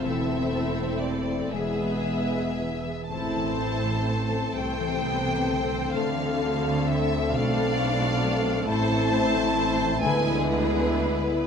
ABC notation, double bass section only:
X:1
M:6/8
L:1/8
Q:3/8=42
K:Am
V:1 name="Double bass section" clef=bass
E,,,3 E,,,3 | A,,,3 C,,3 | D,,3 B,,,3 | A,,,3 D,,3 |]